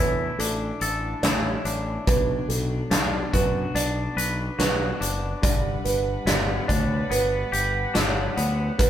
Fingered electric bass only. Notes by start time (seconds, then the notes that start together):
Already playing: E2
0.39 A1
0.81 A1
1.23 A1
1.65 A1
2.07 B1
2.49 B1
2.91 B1
3.34 F#2
3.75 B1
4.17 B1
4.59 B1
5.01 F#1
5.43 G1
5.84 G1
6.25 G1
6.69 D2
7.11 G1
7.53 G1
7.95 G1
8.37 D2
8.79 D1